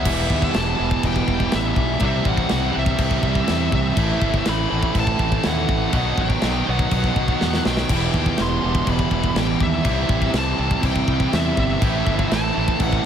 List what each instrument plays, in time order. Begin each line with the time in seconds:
Already playing: lead electric guitar E5
0.04 fingered electric bass E1, distorted electric guitar E2 B2 E3 G3, overdriven electric guitar G3 B3 E4, kick, crash, china
0.14 distorted electric guitar E3 G3
0.22 distorted electric guitar E3 G3
0.30 fingered electric bass D#2, distorted electric guitar E3 G3, kick
0.37 distorted electric guitar E3 G3
0.42 distorted electric guitar E3 G3, kick
0.52 fingered electric bass E1, distorted electric guitar E3 G3, lead electric guitar A5, snare, china
0.61 distorted electric guitar E3 G3
0.68 distorted electric guitar E3 G3
0.77 fingered electric bass E1, distorted electric guitar E2 B2 E3 G3
0.84 distorted electric guitar E3 G3
0.91 distorted electric guitar E3 G3, kick
1.00 distorted electric guitar E3 G3, kick, china
1.04 fingered electric bass E1, lead electric guitar G5
1.08 distorted electric guitar E3 G3
1.16 distorted electric guitar E3 G3, kick
1.22 distorted electric guitar E3 G3
1.28 fingered electric bass E1, distorted electric guitar E3, kick
1.32 distorted electric guitar G3
1.39 distorted electric guitar E3 G3, kick
1.46 distorted electric guitar E3 G3
1.52 fingered electric bass A1, distorted electric guitar E3, lead electric guitar E5, snare, china
1.56 distorted electric guitar G3
1.63 distorted electric guitar E3 G3
1.70 distorted electric guitar E3 G3
1.76 fingered electric bass B1, distorted electric guitar E3 G3, kick
1.84 distorted electric guitar E3 G3
1.93 distorted electric guitar E3 G3
2.00 fingered electric bass C2, distorted electric guitar C3 E3 G3 C4, overdriven electric guitar E3 E4, kick, china
2.05 distorted electric guitar C3, lead electric guitar E5
2.10 distorted electric guitar E3
2.17 distorted electric guitar C3 E3
2.25 fingered electric bass A1, distorted electric guitar C3 E3, kick
2.29 distorted electric guitar C3, lead electric guitar F#5
2.34 distorted electric guitar E3, kick
2.40 distorted electric guitar C3 E3
2.48 fingered electric bass C2, distorted electric guitar C3 E3, snare, china
2.55 distorted electric guitar C3 E3
2.63 distorted electric guitar C3 E3
2.71 distorted electric guitar C3 E3 G3 C4
2.76 fingered electric bass C2, distorted electric guitar C3, lead electric guitar E5
2.80 distorted electric guitar E3
2.86 distorted electric guitar C3 E3, kick
2.95 distorted electric guitar C3 E3, kick, china
2.99 fingered electric bass C2, distorted electric guitar E3
3.04 distorted electric guitar C3
3.10 distorted electric guitar C3 E3, kick
3.18 distorted electric guitar C3 E3
3.23 fingered electric bass C2, distorted electric guitar C3, kick
3.27 distorted electric guitar E3
3.34 distorted electric guitar C3 E3, kick
3.41 distorted electric guitar C3 E3
3.48 fingered electric bass E2, distorted electric guitar C3 E3, snare, china
3.57 distorted electric guitar C3 E3
3.65 distorted electric guitar C3 E3
3.72 fingered electric bass C2, distorted electric guitar C3 E3, lead electric guitar E5, kick
3.81 distorted electric guitar C3 E3
3.89 distorted electric guitar C3 E3
3.96 fingered electric bass A1, distorted electric guitar A2 E3 A3, overdriven electric guitar C4 E4, kick, china
4.05 distorted electric guitar A2 E3
4.12 distorted electric guitar A2 E3
4.20 fingered electric bass G1, distorted electric guitar A2 E3, kick
4.29 distorted electric guitar A2 E3
4.34 distorted electric guitar A2 E3, kick
4.44 fingered electric bass A1, distorted electric guitar A2 E3, snare, china
4.49 distorted electric guitar A2 E3, lead electric guitar B5
4.60 distorted electric guitar A2 E3
4.68 fingered electric bass A1, distorted electric guitar A2 E3 A3
4.73 distorted electric guitar A2 E3
4.83 distorted electric guitar A2 E3, kick
4.91 distorted electric guitar A2 E3, kick, china
4.96 fingered electric bass A1, distorted electric guitar A2, lead electric guitar A5
5.00 distorted electric guitar E3
5.07 distorted electric guitar A2 E3, kick
5.15 distorted electric guitar A2 E3
5.19 fingered electric bass A1, distorted electric guitar A2, kick
5.24 distorted electric guitar E3
5.30 distorted electric guitar A2 E3, kick
5.37 distorted electric guitar A2 E3
5.43 fingered electric bass D#2, distorted electric guitar A2 E3, snare, china
5.48 lead electric guitar F#5
5.53 distorted electric guitar A2 E3
5.61 distorted electric guitar A2 E3
5.68 fingered electric bass A1, distorted electric guitar A2 E3, kick
5.77 distorted electric guitar A2 E3
5.85 distorted electric guitar A2 E3
5.93 fingered electric bass B1, distorted electric guitar B2 D#3 F#3 B3, overdriven electric guitar D#3 D#4, kick, china
5.97 distorted electric guitar B2, lead electric guitar F#5
6.02 distorted electric guitar D#3
6.09 distorted electric guitar B2 D#3
6.18 fingered electric bass A1, distorted electric guitar B2 D#3, lead electric guitar G5, kick
6.25 distorted electric guitar B2 D#3
6.30 distorted electric guitar B2, kick
6.34 distorted electric guitar D#3
6.41 fingered electric bass B1, distorted electric guitar B2 D#3, snare, china
6.47 distorted electric guitar B2 D#3
6.56 distorted electric guitar B2 D#3
6.63 distorted electric guitar B2 D#3 B3
6.68 fingered electric bass B1, distorted electric guitar B2 F#3, lead electric guitar F#5
6.72 distorted electric guitar B2 D#3
6.79 distorted electric guitar B2 D#3, kick
6.87 distorted electric guitar B2 D#3, china
6.92 fingered electric bass B1, distorted electric guitar B2, kick
6.96 distorted electric guitar D#3
7.03 distorted electric guitar B2 D#3, kick
7.11 distorted electric guitar B2 D#3
7.16 fingered electric bass B1, distorted electric guitar B2 D#3, kick
7.26 distorted electric guitar B2 D#3, kick
7.33 distorted electric guitar B2 D#3
7.41 fingered electric bass E2, distorted electric guitar B2 D#3, snare
7.51 distorted electric guitar B2 D#3, snare
7.58 distorted electric guitar B2 D#3
7.65 fingered electric bass B1, distorted electric guitar B2 D#3, lead electric guitar G5, snare
7.73 distorted electric guitar B2 D#3, snare
7.81 distorted electric guitar B2 D#3
7.89 fingered electric bass E1, distorted electric guitar E2 B2 E3 G3, overdriven electric guitar G3 B3 E4, kick, china, crash
7.98 distorted electric guitar E3 G3
8.05 distorted electric guitar E3 G3
8.13 fingered electric bass D#2, distorted electric guitar E3 G3, kick
8.21 distorted electric guitar E3 G3
8.26 distorted electric guitar E3 G3, kick
8.36 distorted electric guitar E3 G3, snare, china
8.40 fingered electric bass E1, lead electric guitar C6
8.44 distorted electric guitar E3 G3
8.52 distorted electric guitar E3 G3
8.59 distorted electric guitar B2 E3 G3
8.64 fingered electric bass E1, distorted electric guitar E2 E3
8.69 distorted electric guitar G3
8.75 distorted electric guitar E3 G3, kick
8.83 fingered electric bass E1, distorted electric guitar E3 G3, kick, china
8.90 distorted electric guitar E3 G3, lead electric guitar B5
8.99 distorted electric guitar E3 G3, kick
9.06 distorted electric guitar E3 G3
9.11 fingered electric bass E1, distorted electric guitar E3, kick
9.17 distorted electric guitar G3
9.22 distorted electric guitar E3 G3, kick
9.29 distorted electric guitar E3 G3
9.36 fingered electric bass A1, distorted electric guitar E3 G3, lead electric guitar G5, snare, china
9.45 distorted electric guitar E3 G3
9.52 distorted electric guitar E3 G3
9.60 fingered electric bass D#2, distorted electric guitar E3 G3, lead electric guitar E5, kick
9.68 distorted electric guitar E3 G3
9.76 distorted electric guitar E3 G3
9.83 fingered electric bass C2, distorted electric guitar C3 E3 G3 C4, overdriven electric guitar E3, kick, china
9.89 distorted electric guitar C3, overdriven electric guitar E4
9.93 distorted electric guitar E3
10.00 distorted electric guitar C3 E3
10.06 fingered electric bass A1, distorted electric guitar C3 E3, kick
10.13 distorted electric guitar C3 E3
10.22 distorted electric guitar C3 E3, kick
10.30 fingered electric bass C2, distorted electric guitar C3 E3, snare, china
10.37 distorted electric guitar C3 E3, lead electric guitar A5
10.45 distorted electric guitar C3 E3
10.52 distorted electric guitar C3 E3
10.57 fingered electric bass C2, distorted electric guitar C3 E3 G3 C4
10.67 distorted electric guitar C3 E3, kick
10.75 distorted electric guitar C3 E3
10.82 fingered electric bass C2, distorted electric guitar C3 E3, lead electric guitar G5, kick, china
10.90 distorted electric guitar C3 E3
10.96 distorted electric guitar C3 E3, kick
11.05 fingered electric bass C2, distorted electric guitar C3 E3, kick
11.12 distorted electric guitar C3 E3
11.20 distorted electric guitar C3 E3, kick
11.29 distorted electric guitar C3 E3
11.33 fingered electric bass E2, distorted electric guitar C3 E3, lead electric guitar E5, snare, china
11.42 distorted electric guitar C3 E3
11.51 distorted electric guitar C3 E3
11.57 fingered electric bass G1, distorted electric guitar C3 E3, lead electric guitar E5, kick
11.65 distorted electric guitar C3 E3
11.73 distorted electric guitar C3 E3
11.80 fingered electric bass A1, distorted electric guitar A2 E3 A3, overdriven electric guitar C4, kick, china
11.84 overdriven electric guitar E4
11.89 distorted electric guitar A2 E3
11.97 distorted electric guitar A2 E3
12.05 fingered electric bass G1, distorted electric guitar A2 E3, kick
12.11 distorted electric guitar A2 E3
12.19 distorted electric guitar A2 E3, kick
12.27 distorted electric guitar A2 E3
12.31 fingered electric bass A1, distorted electric guitar A2, lead electric guitar A5, snare, china
12.36 distorted electric guitar E3
12.42 distorted electric guitar A2 E3
12.49 distorted electric guitar A2 E3
12.54 fingered electric bass A1, distorted electric guitar A2 E3 A3
12.58 distorted electric guitar A2
12.65 distorted electric guitar A2 E3, kick
12.73 distorted electric guitar A2 E3
12.80 fingered electric bass A1, distorted electric guitar A2 E3, lead electric guitar F#5, kick, china
12.88 distorted electric guitar A2 E3
12.93 distorted electric guitar A2 E3, kick